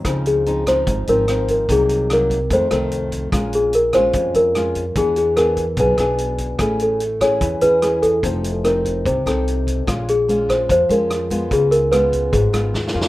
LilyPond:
<<
  \new Staff \with { instrumentName = "Celesta" } { \time 4/4 \key des \major \tempo 4 = 147 r8 aes'4 c''4 bes'4 bes'8 | aes'4 bes'4 c''4. r8 | r8 aes'8 bes'8 c''4 bes'4. | gis'8 gis'8 bes'4 b'4. r8 |
r8 a'4 cis''4 ces''4 a'8~ | a'4 bes'4 c''4. r8 | r8 aes'4 c''8 c''8 bes'4. | aes'8 bes'8 ces''4 aes'4. r8 | }
  \new Staff \with { instrumentName = "Nylon-string guitar" } { \time 4/4 \key des \major << { <f c' ees'>4 <f c' ees'>8 <f c' ees'>4 <f c' ees'>8 <f c' ees'>4 | <ges bes ees'>4 <ges bes ees'>8 r8 <ees a c'>8 <ees a c'>4. | <aes des' f'>4 r8 <aes des' f'>4. <aes des' f'>8 r8 | <b d' gis'>4 <b d' gis'>8 r8 <b d' gis'>8 <b d' gis'>4. |
<cis' e' gis'>4 r8 <cis' e' gis'>4 <cis' e' gis'>8 <cis' e' gis'>4 | <c' ees' a'>8 r8 <c' ees'>4. <c' ees' a'>4. | <aes des' f'>8 r8 <aes des' f'>4 r8 <aes des' f'>4 <aes ces' f'>8~ | <aes ces' f'>4 <aes ces' f'>4. <aes ces' f'>4 <bes des' f'>8 | } \\ { des2 aes,2 | c2 f,2 | bes,2 f,2 | e2 b,2 |
a2 e2 | f2 c2 | bes,2 f2 | des2 aes,2 | } >> }
  \new Staff \with { instrumentName = "Upright bass" } { \clef bass \time 4/4 \key des \major des,2 aes,,8 aes,,4. | c,2 f,8 c,4. | bes,,2 f,8 f,4. | e,2 b,,8 b,,4. |
a,,2 e,8 e,4. | f,,2 c,8 c,4. | bes,,2 f,8 f,4. | des,2 aes,,8 aes,,8 ees,8 f,8 | }
  \new DrumStaff \with { instrumentName = "Drums" } \drummode { \time 4/4 <hh bd ss>8 hh8 hh8 <hh bd ss>8 <hh bd>8 hh8 <hh ss>8 <hh bd>8 | <hh bd>8 hh8 <hh ss>8 <hh bd>8 <hh bd>8 <hh ss>8 hh8 <hh bd>8 | <hh bd ss>8 hh8 hh8 <hh bd ss>8 <hh bd>8 hh8 <hh ss>8 <hh bd>8 | <hh bd>8 hh8 <hh ss>8 <hh bd>8 <hh bd>8 <hh ss>8 hh8 <hh bd>8 |
<hh bd ss>8 hh8 hh8 <hh bd ss>8 <hh bd>8 hh8 <hh ss>8 <hh bd>8 | <hh bd>8 hh8 <hh ss>8 <hh bd>8 <hh bd>8 <hh ss>8 hh8 <hh bd>8 | <hh bd ss>8 hh8 hh8 <hh bd ss>8 <hh bd>8 hh8 <hh ss>8 <hh bd>8 | <hh bd>8 hh8 <hh ss>8 <hh bd>8 <hh bd>8 <hh ss>8 \tuplet 3/2 { sn8 sn8 sn8 } | }
>>